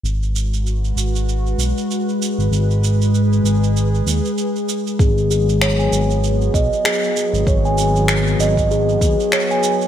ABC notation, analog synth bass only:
X:1
M:4/4
L:1/16
Q:"Swing 16ths" 1/4=97
K:G#m
V:1 name="Analog synth bass" clef=bass
G,,,6 G,,,4 B,,, z4 G,,, | G,,,6 G,,,4 D,, z4 z | G,,,6 G,,,4 B,,, z4 G,,, | G,,,6 G,,,4 D,, z4 z |]